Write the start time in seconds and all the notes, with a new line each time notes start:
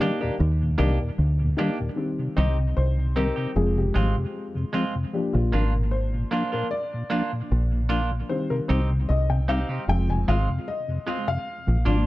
0.00 D#3 G3 A#3 D4 D#4 G4 A#4 D5
0.20 D#2 A#2 A#3 D4 D#4 G4 A#4 D5
0.40 D#2
0.62 D#2 A#2
0.78 C2 D#3 G3 A#3 D4 D#4 G4 A#4 D5
0.99 D#2 A#2 A#4 D5
1.19 D2
1.41 D#2 A#2
1.57 D#3 G3 A#3 D4 D#4 G4 A#4 D5
1.79 D#2 A#2 A#4 D5
1.96 D#3 G3 C4
2.19 C3
2.37 C2 D#3 G3 C4 D#4 G4 D#5
2.58 C3
2.77 C2 C5
2.98 C3
3.16 D#3 G3 C4 D#4 G4 A#4
3.36 C3 C4 D#4 G4
3.56 F1 F3 G#3 C4 G#4
3.76 F2 C3 G4
3.94 G#1 F3 G#3 C4 F4
4.17 F2 C3
4.55 F2 C3
4.73 F3 G#3 C4 F4
4.95 F2 C3
5.13 F3 A#3 D4 G4
5.33 A#1 A#2 F4
5.52 G#1 F3 A#3 D4 F4 A#4
5.75 A#2
5.91 C5
6.14 A#2
6.31 F3 A#3 D4 F4
6.52 A#2 A#3 D4 F4 A#4
6.71 D5
6.94 A#2
7.10 F3 A#3 D4 F4
7.33 A#2
7.52 A#1
7.72 A#2
7.89 F3 A#3 D4 F4
8.11 A#2
8.29 D#3 G3 C4 C5
8.50 C3 A#4
8.68 C2 G3 C4 D#4 G4 C5
8.90 C3
9.09 C2 D#5
9.30 C3 G5
9.48 G3 C4 D#4 G4 F5
9.69 C3 C4 D#4 G4
9.88 F1 F3 G#3 C4 G5
10.09 F2 C3 G#5
10.28 G#1 G#3 C4 F4 F5
10.49 F2 C3
10.68 D#5
10.88 F2 C3
11.06 G#3 C4 F4
11.28 F2 C3 F5
11.67 A#1 A#2 F3
11.85 G#1 F3 A#3 D4 F4